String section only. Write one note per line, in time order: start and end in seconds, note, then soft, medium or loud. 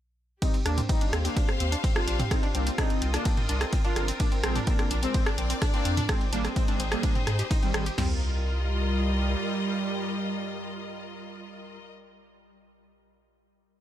0.42 3.07 G4 medium
0.69 3.07 C5 medium
0.94 3.06 F5 medium
2.31 6.77 F4 medium
2.59 6.85 A#4 medium
2.87 4.20 D#5 medium
4.84 6.85 D5 loud
6.09 7.98 D#4 medium
6.20 7.98 C5 medium
6.24 7.98 G#4 medium
7.98 11.78 F4 medium
8.05 11.85 A#4 medium
8.12 11.93 D#5 medium